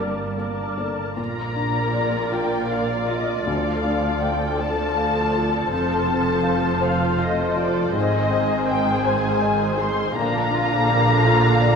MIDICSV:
0, 0, Header, 1, 7, 480
1, 0, Start_track
1, 0, Key_signature, -2, "major"
1, 0, Tempo, 789474
1, 717, Time_signature, 6, 3, 24, 8
1, 1187, Tempo, 757576
1, 3107, Tempo, 741656
1, 5987, Tempo, 724638
1, 7526, End_track
2, 0, Start_track
2, 0, Title_t, "Violin section"
2, 0, Program_c, 0, 48
2, 0, Note_on_c, 0, 81, 42
2, 214, Note_off_c, 0, 81, 0
2, 232, Note_on_c, 0, 81, 43
2, 708, Note_off_c, 0, 81, 0
2, 720, Note_on_c, 0, 82, 68
2, 1404, Note_off_c, 0, 82, 0
2, 1427, Note_on_c, 0, 79, 75
2, 1667, Note_off_c, 0, 79, 0
2, 1668, Note_on_c, 0, 77, 62
2, 1896, Note_on_c, 0, 75, 59
2, 1907, Note_off_c, 0, 77, 0
2, 2132, Note_on_c, 0, 77, 67
2, 2140, Note_off_c, 0, 75, 0
2, 2614, Note_off_c, 0, 77, 0
2, 2621, Note_on_c, 0, 79, 72
2, 2865, Note_on_c, 0, 81, 84
2, 2866, Note_off_c, 0, 79, 0
2, 3572, Note_off_c, 0, 81, 0
2, 3580, Note_on_c, 0, 81, 83
2, 4286, Note_off_c, 0, 81, 0
2, 4303, Note_on_c, 0, 77, 79
2, 4545, Note_off_c, 0, 77, 0
2, 4547, Note_on_c, 0, 75, 73
2, 4788, Note_off_c, 0, 75, 0
2, 4791, Note_on_c, 0, 74, 72
2, 5025, Note_on_c, 0, 75, 84
2, 5030, Note_off_c, 0, 74, 0
2, 5497, Note_off_c, 0, 75, 0
2, 5500, Note_on_c, 0, 79, 90
2, 5740, Note_off_c, 0, 79, 0
2, 5746, Note_on_c, 0, 80, 78
2, 6224, Note_off_c, 0, 80, 0
2, 6235, Note_on_c, 0, 84, 75
2, 6469, Note_off_c, 0, 84, 0
2, 6470, Note_on_c, 0, 82, 97
2, 7526, Note_off_c, 0, 82, 0
2, 7526, End_track
3, 0, Start_track
3, 0, Title_t, "Felt piano"
3, 0, Program_c, 1, 0
3, 0, Control_c, 1, 64, 127
3, 0, Note_on_c, 1, 43, 50
3, 0, Note_on_c, 1, 50, 34
3, 0, Note_on_c, 1, 58, 28
3, 0, Note_on_c, 1, 70, 29
3, 0, Note_on_c, 1, 74, 36
3, 208, Note_off_c, 1, 58, 0
3, 210, Note_off_c, 1, 70, 0
3, 213, Note_off_c, 1, 74, 0
3, 229, Note_on_c, 1, 58, 32
3, 463, Note_off_c, 1, 58, 0
3, 472, Note_on_c, 1, 58, 30
3, 473, Note_on_c, 1, 69, 29
3, 476, Note_on_c, 1, 74, 35
3, 691, Note_off_c, 1, 58, 0
3, 692, Note_off_c, 1, 69, 0
3, 693, Note_off_c, 1, 43, 0
3, 693, Note_off_c, 1, 74, 0
3, 709, Note_on_c, 1, 46, 49
3, 728, Control_c, 1, 64, 0
3, 734, Note_off_c, 1, 50, 0
3, 832, Control_c, 1, 64, 127
3, 950, Note_on_c, 1, 62, 35
3, 1180, Note_on_c, 1, 74, 47
3, 1330, Note_off_c, 1, 62, 0
3, 1420, Note_on_c, 1, 65, 42
3, 1568, Note_off_c, 1, 74, 0
3, 1664, Note_on_c, 1, 74, 41
3, 1807, Note_off_c, 1, 65, 0
3, 1902, Note_on_c, 1, 65, 38
3, 2048, Note_off_c, 1, 74, 0
3, 2116, Note_off_c, 1, 46, 0
3, 2143, Note_off_c, 1, 65, 0
3, 2146, Note_on_c, 1, 38, 55
3, 2156, Control_c, 1, 64, 0
3, 2275, Control_c, 1, 64, 127
3, 2387, Note_on_c, 1, 62, 39
3, 2623, Note_on_c, 1, 77, 46
3, 2775, Note_off_c, 1, 62, 0
3, 2860, Note_on_c, 1, 74, 41
3, 3010, Note_off_c, 1, 77, 0
3, 3101, Note_on_c, 1, 77, 43
3, 3245, Note_off_c, 1, 74, 0
3, 3340, Note_on_c, 1, 65, 44
3, 3484, Note_off_c, 1, 77, 0
3, 3557, Note_off_c, 1, 38, 0
3, 3578, Note_on_c, 1, 41, 53
3, 3580, Note_off_c, 1, 65, 0
3, 3595, Control_c, 1, 64, 0
3, 3692, Control_c, 1, 64, 127
3, 3814, Note_on_c, 1, 60, 43
3, 4046, Note_on_c, 1, 77, 48
3, 4202, Note_off_c, 1, 60, 0
3, 4285, Note_on_c, 1, 72, 48
3, 4441, Note_off_c, 1, 77, 0
3, 4532, Note_on_c, 1, 77, 47
3, 4682, Note_off_c, 1, 72, 0
3, 4772, Note_on_c, 1, 65, 46
3, 4925, Note_off_c, 1, 77, 0
3, 5000, Note_off_c, 1, 41, 0
3, 5013, Note_on_c, 1, 44, 55
3, 5021, Note_off_c, 1, 65, 0
3, 5040, Control_c, 1, 64, 0
3, 5150, Control_c, 1, 64, 127
3, 5255, Note_on_c, 1, 60, 46
3, 5503, Note_on_c, 1, 75, 55
3, 5646, Note_off_c, 1, 60, 0
3, 5740, Note_on_c, 1, 72, 52
3, 5890, Note_off_c, 1, 75, 0
3, 5980, Note_on_c, 1, 75, 53
3, 6126, Note_off_c, 1, 72, 0
3, 6215, Note_on_c, 1, 68, 55
3, 6365, Note_off_c, 1, 75, 0
3, 6430, Note_off_c, 1, 44, 0
3, 6459, Note_off_c, 1, 68, 0
3, 6465, Note_on_c, 1, 46, 67
3, 6476, Control_c, 1, 64, 0
3, 6595, Control_c, 1, 64, 127
3, 6698, Note_on_c, 1, 62, 47
3, 6933, Note_on_c, 1, 74, 56
3, 7086, Note_off_c, 1, 62, 0
3, 7182, Note_on_c, 1, 65, 52
3, 7322, Note_off_c, 1, 74, 0
3, 7431, Note_on_c, 1, 74, 60
3, 7526, Note_off_c, 1, 46, 0
3, 7526, Note_off_c, 1, 65, 0
3, 7526, Note_off_c, 1, 74, 0
3, 7526, End_track
4, 0, Start_track
4, 0, Title_t, "Violin section"
4, 0, Program_c, 2, 48
4, 0, Note_on_c, 2, 70, 58
4, 326, Note_off_c, 2, 70, 0
4, 718, Note_on_c, 2, 70, 54
4, 722, Note_on_c, 2, 74, 56
4, 2121, Note_off_c, 2, 70, 0
4, 2139, Note_on_c, 2, 69, 60
4, 3560, Note_off_c, 2, 74, 0
4, 3578, Note_on_c, 2, 72, 58
4, 4999, Note_off_c, 2, 69, 0
4, 5028, Note_on_c, 2, 68, 61
4, 6435, Note_off_c, 2, 72, 0
4, 6437, Note_off_c, 2, 68, 0
4, 6471, Note_on_c, 2, 77, 68
4, 6473, Note_on_c, 2, 58, 65
4, 6581, Note_off_c, 2, 58, 0
4, 6593, Note_on_c, 2, 62, 60
4, 6709, Note_off_c, 2, 62, 0
4, 6713, Note_on_c, 2, 65, 58
4, 6829, Note_off_c, 2, 65, 0
4, 6832, Note_on_c, 2, 62, 58
4, 6949, Note_off_c, 2, 62, 0
4, 6956, Note_on_c, 2, 58, 62
4, 7067, Note_on_c, 2, 62, 69
4, 7071, Note_off_c, 2, 58, 0
4, 7186, Note_off_c, 2, 62, 0
4, 7192, Note_on_c, 2, 65, 69
4, 7308, Note_off_c, 2, 65, 0
4, 7309, Note_on_c, 2, 62, 64
4, 7422, Note_on_c, 2, 58, 72
4, 7427, Note_off_c, 2, 62, 0
4, 7526, Note_off_c, 2, 58, 0
4, 7526, Note_off_c, 2, 77, 0
4, 7526, End_track
5, 0, Start_track
5, 0, Title_t, "Viola section"
5, 0, Program_c, 3, 48
5, 0, Note_on_c, 3, 70, 39
5, 0, Note_on_c, 3, 74, 42
5, 213, Note_off_c, 3, 74, 0
5, 214, Note_off_c, 3, 70, 0
5, 228, Note_on_c, 3, 70, 40
5, 228, Note_on_c, 3, 74, 40
5, 706, Note_off_c, 3, 70, 0
5, 706, Note_off_c, 3, 74, 0
5, 716, Note_on_c, 3, 58, 54
5, 717, Note_on_c, 3, 65, 48
5, 2120, Note_off_c, 3, 58, 0
5, 2148, Note_on_c, 3, 53, 55
5, 3557, Note_off_c, 3, 65, 0
5, 3587, Note_on_c, 3, 65, 64
5, 5005, Note_off_c, 3, 65, 0
5, 5030, Note_off_c, 3, 53, 0
5, 5032, Note_on_c, 3, 51, 62
5, 5034, Note_on_c, 3, 60, 60
5, 6440, Note_off_c, 3, 51, 0
5, 6441, Note_off_c, 3, 60, 0
5, 6468, Note_on_c, 3, 50, 72
5, 6469, Note_on_c, 3, 62, 73
5, 7526, Note_off_c, 3, 50, 0
5, 7526, Note_off_c, 3, 62, 0
5, 7526, End_track
6, 0, Start_track
6, 0, Title_t, "Cello section"
6, 0, Program_c, 4, 48
6, 0, Note_on_c, 4, 55, 68
6, 474, Note_off_c, 4, 55, 0
6, 718, Note_on_c, 4, 46, 56
6, 2121, Note_off_c, 4, 46, 0
6, 2148, Note_on_c, 4, 38, 56
6, 3558, Note_off_c, 4, 38, 0
6, 3579, Note_on_c, 4, 41, 62
6, 5001, Note_off_c, 4, 41, 0
6, 5031, Note_on_c, 4, 44, 66
6, 6439, Note_off_c, 4, 44, 0
6, 6471, Note_on_c, 4, 46, 77
6, 7526, Note_off_c, 4, 46, 0
6, 7526, End_track
7, 0, Start_track
7, 0, Title_t, "Double bass section"
7, 0, Program_c, 5, 48
7, 0, Note_on_c, 5, 31, 49
7, 635, Note_off_c, 5, 31, 0
7, 712, Note_on_c, 5, 34, 51
7, 2118, Note_off_c, 5, 34, 0
7, 2142, Note_on_c, 5, 38, 56
7, 3555, Note_off_c, 5, 38, 0
7, 3581, Note_on_c, 5, 29, 59
7, 5002, Note_off_c, 5, 29, 0
7, 5031, Note_on_c, 5, 32, 67
7, 6439, Note_off_c, 5, 32, 0
7, 6469, Note_on_c, 5, 34, 71
7, 7526, Note_off_c, 5, 34, 0
7, 7526, End_track
0, 0, End_of_file